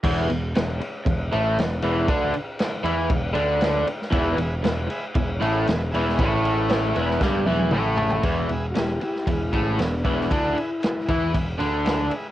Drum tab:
CC |x---------------|----------------|----------------|----------------|
RD |--x-x-x-x-x-x-x-|x-x-x-x-x-x-x-x-|x-x-x-x-x-x-x-x-|x-x-x-x---------|
SD |----o-------o---|----o-------o--o|----o-------o--o|----o--oo-------|
T1 |----------------|----------------|----------------|----------oo----|
T2 |----------------|----------------|----------------|------------o---|
FT |----------------|----------------|----------------|--------------oo|
BD |o-------o-------|o-------o-------|o-------o-------|o-------o-------|

CC |----------------|----------------|
RD |x-x-x-x-x-x-x-x-|x-x-x-x-x-x-x-x-|
SD |----o--o----o--o|----o-------o---|
T1 |----------------|----------------|
T2 |----------------|----------------|
FT |----------------|----------------|
BD |o-------o-o---o-|o-----o-o-------|